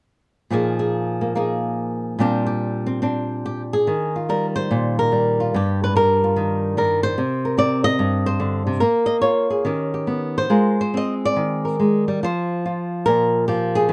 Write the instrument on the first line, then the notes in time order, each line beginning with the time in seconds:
nylon-string guitar
0.50 A#2 F3 A#3 D#4 G#4
0.79 G#4
1.21 A#3
1.35 A#3 D#4 G#4
2.19 A#2 G3 C4 D4 G4
2.46 G4
2.86 C4
3.02 C4 D4
3.46 G4
3.73 G#4
3.87 D#3
4.16 F4
4.29 G3 A#4
4.56 C5
4.71 A#2
4.99 A#4
5.12 G3
5.40 F4
5.54 G2 G4
5.84 B4
5.95 G3 A#4
6.24 F4
6.36 D#3
6.77 G3 A#4
7.03 C5
7.18 C3
7.45 A#4
7.58 C4 D5
7.84 D#5
7.99 G2
8.26 C5
8.40 D3
8.67 C3
8.80 A#3 A#4
9.06 D#5
9.21 F4 C#5
9.50 G#4
9.65 D#3 C#4 G4
9.94 G4
10.07 B3
10.38 C5
10.50 G#3 F4 A#4
10.81 C5
10.94 C4 D#5
11.25 D5
11.36 D#3
11.65 A#4
11.80 G#3
12.08 G3
12.23 F3 C5
12.66 F4
13.06 A#2 A#4
13.48 F3 G4
13.75 G#4
13.89 D#3